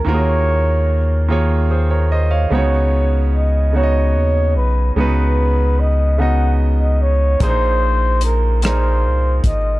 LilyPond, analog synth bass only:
\new Staff \with { instrumentName = "Analog synth bass" } { \clef bass \time 6/8 \key des \mixolydian \tempo 4. = 49 ees,2. | des,2 ees,8 ces,8 | des,2. | bes,,2 c,8 aes,,8 | }